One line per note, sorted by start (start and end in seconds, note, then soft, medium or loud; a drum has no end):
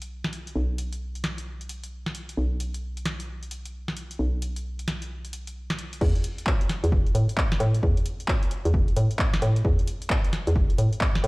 0.00 0.54 B1 medium
0.00 closed hi-hat medium
0.24 snare soft
0.33 open hi-hat medium
0.47 closed hi-hat medium
0.56 2.36 B1 medium
0.78 open hi-hat loud
0.93 closed hi-hat medium
1.15 closed hi-hat medium
1.24 snare soft
1.24 open hi-hat medium
1.38 closed hi-hat medium
1.61 closed hi-hat medium
1.69 open hi-hat loud
1.84 closed hi-hat medium
2.06 snare soft
2.15 open hi-hat medium
2.29 closed hi-hat medium
2.37 4.18 B1 medium
2.60 open hi-hat loud
2.74 closed hi-hat medium
2.97 closed hi-hat medium
3.06 snare medium
3.06 open hi-hat medium
3.20 closed hi-hat medium
3.43 closed hi-hat medium
3.51 open hi-hat loud
3.65 closed hi-hat medium
3.88 snare soft
3.97 open hi-hat medium
4.11 closed hi-hat medium
4.19 5.99 B1 medium
4.42 open hi-hat loud
4.56 closed hi-hat medium
4.79 closed hi-hat medium
4.88 snare medium
4.88 open hi-hat medium
5.02 closed hi-hat medium
5.25 closed hi-hat medium
5.33 open hi-hat loud
5.47 closed hi-hat medium
5.70 snare soft
5.70 closed hi-hat soft
5.79 open hi-hat medium
5.93 closed hi-hat medium
6.01 6.14 E2 loud
6.01 kick loud
6.01 crash loud
6.16 closed hi-hat medium
6.24 open hi-hat loud
6.38 closed hi-hat medium
6.47 kick loud
6.47 clap loud
6.61 closed hi-hat medium
6.69 snare medium
6.69 open hi-hat loud
6.84 6.94 E2 medium
6.84 closed hi-hat medium
6.92 7.13 E1 medium
6.92 kick loud
7.07 closed hi-hat soft
7.15 7.27 A2 medium
7.15 open hi-hat loud
7.29 closed hi-hat medium
7.38 kick loud
7.38 clap loud
7.52 snare medium
7.52 closed hi-hat soft
7.60 7.81 A2 loud
7.60 open hi-hat loud
7.75 closed hi-hat medium
7.83 7.96 E2 loud
7.83 kick loud
7.97 closed hi-hat soft
8.06 open hi-hat loud
8.20 closed hi-hat medium
8.28 kick loud
8.28 clap loud
8.43 closed hi-hat medium
8.51 open hi-hat medium
8.65 8.75 E2 medium
8.65 closed hi-hat medium
8.74 8.95 E1 medium
8.74 kick loud
8.88 closed hi-hat soft
8.97 9.09 A2 medium
8.97 open hi-hat loud
9.11 closed hi-hat medium
9.19 kick loud
9.19 clap loud
9.34 snare medium
9.34 closed hi-hat soft
9.42 9.63 A2 loud
9.42 open hi-hat loud
9.56 closed hi-hat medium
9.65 9.77 E2 loud
9.65 kick loud
9.79 closed hi-hat soft
9.88 open hi-hat loud
10.02 closed hi-hat medium
10.10 kick loud
10.10 clap loud
10.24 closed hi-hat medium
10.33 snare medium
10.33 open hi-hat medium
10.47 10.57 E2 medium
10.47 closed hi-hat medium
10.56 10.76 E1 medium
10.56 kick loud
10.70 closed hi-hat soft
10.78 10.91 A2 medium
10.78 open hi-hat loud
10.93 closed hi-hat medium
11.01 kick loud
11.01 clap loud
11.15 snare medium
11.15 closed hi-hat soft
11.24 11.27 A2 loud
11.24 open hi-hat medium